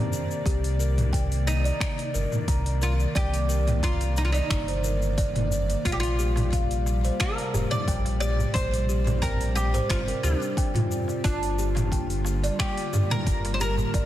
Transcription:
Already playing: C3 D#3 A#3 G4 D5
0.13 shaker
0.31 shaker
0.46 C2 G4, kick, open hi-hat, shaker
0.64 open hi-hat, shaker
0.79 A#4, shaker
0.98 mid tom, open hi-hat, shaker
1.13 G5, kick, open hi-hat, shaker
1.32 open hi-hat, shaker
1.47 D#4, shaker
1.64 D5, open hi-hat, shaker
1.80 finger snap, kick, open hi-hat, shaker
1.99 open hi-hat
2.14 G1 A#4, shaker
2.32 mid tom, shaker
2.48 C2 A#5, kick, open hi-hat, shaker
2.66 open hi-hat
2.82 F4 A#4, shaker
3.00 shaker
3.15 C2 G4 D5, kick, open hi-hat, shaker
3.34 open hi-hat, shaker
3.49 A#4, shaker
3.68 mid tom, open hi-hat, shaker
3.83 F4 A#5, kick, open hi-hat, shaker
4.01 open hi-hat, shaker
4.17 D#4, shaker
4.25 F4
4.32 D#4 D5, open hi-hat, shaker
4.50 G1, finger snap, kick, open hi-hat, shaker
4.68 C5, open hi-hat
4.84 A#4, shaker
5.02 shaker
5.18 D5, kick, open hi-hat, shaker
5.35 D5, mid tom, open hi-hat
5.52 shaker
5.70 open hi-hat, shaker
5.85 A#1 G3 F4, kick, open hi-hat, shaker
5.92 G4
6.00 F4, open hi-hat, shaker
6.19 G4, shaker
6.36 mid tom, open hi-hat, darbuka ka, darbuka tek, shaker
6.53 F5, kick, open hi-hat, shaker
6.71 open hi-hat, shaker
6.86 darbuka tek, shaker
7.05 C5, open hi-hat, shaker
7.20 A#4, finger snap, kick, open hi-hat, darbuka ka, darbuka tek, shaker
7.38 open hi-hat
7.54 F1 G4, darbuka tek, darbuka dum, shaker
7.71 D5, mid tom, shaker
7.88 A#1 G5, kick, open hi-hat, shaker
8.05 open hi-hat, darbuka tek
8.20 G4 D5, shaker
8.39 darbuka dum, shaker
8.54 A#1 C4 C5, kick, open hi-hat, shaker
8.74 open hi-hat, shaker
8.89 G4, shaker
9.07 mid tom, open hi-hat, darbuka ka, darbuka dum, shaker
9.22 A#4 G5, kick, open hi-hat, shaker
9.41 open hi-hat, shaker
9.55 G4, darbuka tek, shaker
9.74 C5, open hi-hat, darbuka dum, shaker
9.90 G1 F4, finger snap, kick, open hi-hat, shaker
10.08 A#4, open hi-hat, darbuka ka
10.23 D2 D4 G4, shaker
10.41 darbuka ka, shaker
10.57 G5, kick, open hi-hat, shaker
10.74 F4, mid tom, open hi-hat, darbuka ka, darbuka dum
10.91 shaker
11.08 darbuka ka, shaker
11.24 G1 D3 G3 A#3 D4 F4, kick, open hi-hat, shaker
11.43 open hi-hat, shaker
11.59 G4, shaker
11.75 mid tom, open hi-hat, darbuka ka, darbuka tek, shaker
11.92 G5, kick, open hi-hat, shaker
12.10 open hi-hat, shaker
12.25 darbuka tek, shaker
12.44 D5, open hi-hat, shaker
12.59 G4, finger snap, kick, open hi-hat, darbuka ka, darbuka tek, shaker
12.77 open hi-hat
12.93 G2 G4, darbuka tek, darbuka dum, shaker
13.11 A#4, mid tom, shaker
13.26 G1 A#5, kick, open hi-hat, shaker
13.45 open hi-hat, darbuka tek
13.54 C5
13.60 G4 A#4, shaker
13.78 darbuka dum, shaker
13.94 G1 D5, kick, open hi-hat, shaker

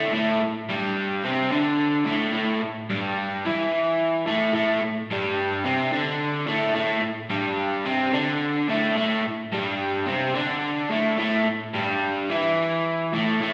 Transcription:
Already playing: A2 A3
0.13 A2 A3
0.42 A2
0.69 G2 G3
1.24 C3 C4
1.50 D3 D4
2.05 A2 A3
2.33 A2 A3
2.62 A2
2.90 G2 G3
3.45 E3 E4
4.26 A2 A3
4.53 A2 A3
4.83 A2
5.11 G2 G3
5.64 C3 C4
5.92 D3 D4
6.47 A2 A3
6.75 A2 A3
7.02 A2
7.29 G2 G3
7.85 C3 C4
8.12 D3 D4
8.68 A2 A3
8.96 A2 A3
9.24 A2
9.52 G2 G3
10.06 C3 C4
10.35 D3 D4
10.90 A2 A3
11.19 A2 A3
11.45 A2
11.74 G2 G3
12.29 E3 E4
13.13 A2 A3
13.41 A2 A3

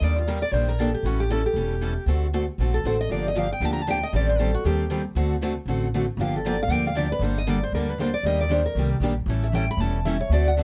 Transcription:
0.01 D#2 D#3 G3 A#3 D4 G4 D5
0.18 F4
0.27 D#3 G3 A#3 D4 G4 A#4
0.42 D5
0.52 A#1 D#3 G3 A#3 D4 G4 C5
0.69 A#4
0.79 D#3 G3 A#3 D4 G4 A4
0.94 G4
1.03 A1 E3 G3 C#4 E4 F#4 A4
1.20 G4
1.30 E3 G3 C#4 E4 A4
1.46 G4
1.54 E1 E3 G3 C#4 E4 A4
1.81 E3 G3 C#4 E4 A4
2.06 D2 D3 A3 C4 F#4 A4
2.34 D3 A3 C4 F#4 A4
2.58 A#1 D3 A3 C4 F#4 A4
2.74 A4
2.84 A1 D3 A3 C4 F#4 A4 C5
3.01 D#5
3.09 G1 D3 F3 A#3 D4 G4 D5
3.28 D#5
3.35 D3 F3 A#3 D4 G4 F5
3.52 G5
3.60 D2 D3 F3 A#3 D4 G4
3.65 A5
3.73 A#5
3.82 A5
3.87 D3 F3 A#3 D4 G4 G5
4.03 D#5
4.13 A1 D#3 G3 C4 G4 A4 D5
4.29 C5
4.39 D#3 G3 C4 G4 A4
4.54 F#4
4.64 D#2 D#3 G3 C4 G4 A4
4.90 D#3 G3 C4 G4 A4
5.15 D2 D3 A3 C4 F#4 A4
5.42 D3 A3 C4 F#4 A4
5.66 A1 D3 A3 C4 F#4 A4
5.94 D3 A3 C4 F#4 A4
6.17 G1 D3 F3 F5
6.21 A#3 D4 G4
6.36 A4
6.46 D3 F3 A#3 D4 G4 D5
6.63 F5
6.68 D2 D3 F3 A#3 D4 G4
6.72 G5
6.87 F5
6.95 D3 F3 A#3 D4 G4 D5
7.12 B4
7.19 G1 D3 G3 A#3 D4 A4
7.24 C5
7.38 D#5
7.47 D3 G3 A#3 D4 A4 D5
7.63 C5
7.72 D2 D3 G3 A#3 D4 A4 A#4
7.91 B4
8.00 D3 G3 A#3 D4 A4 C5
8.14 D5
8.23 D#2 D#3 G3 A#3 D4 G4 D#5
8.41 D5
8.50 D#3 G3 A#3 D4 G4 C5
8.66 A#4
8.75 C2 D#3 G3 A#3 D4
8.79 G4
9.00 A#1 D#3 G3 A#3 D4 G4
9.26 A1 E3 G3 C#4 E4 A4
9.44 E5
9.55 E3 G3 C#4 E4 A4 G5
9.71 B5
9.77 E1 G3 A5
9.81 E3 C#4 E4 A4
10.05 E3 G3 C#4 E4 A4 E5
10.21 C#5
10.29 D2 D3 A3 C4 F#4 A4
10.33 D5
10.48 F#5
10.58 D3 A3 C4 F#4 A4

